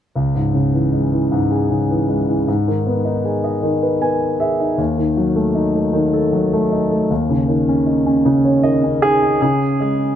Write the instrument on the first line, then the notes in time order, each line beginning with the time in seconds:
grand piano
0.16 C#2
0.35 G#2
0.54 C#3
0.74 E3
0.93 G#3
1.12 E3
1.32 G#2
1.51 G#4
1.70 C#3
1.91 E3
2.08 G#3
2.28 E3
2.48 G#2
2.68 D#3
2.87 B3
3.05 D#4
3.25 G#4
3.44 D#5
3.63 D#3
3.82 B4
4.01 B3 G#5
4.40 G#4 E5
4.60 D#4
4.78 D#2
4.98 D#3
5.17 F#3
5.36 A3
5.55 D#4
5.74 A3
5.93 D#3
6.14 A4
6.33 F#3
6.53 A3
6.72 D#4
6.91 A3
7.11 D#2
7.29 C#3
7.48 D#3
7.68 C#4
7.86 D#4
8.06 C#4
8.25 C#3
8.44 C#5
8.63 D#3 D#5
8.83 C#4
9.02 D#4 G#4 G#5
9.23 C#4
9.42 C#3
9.80 G#3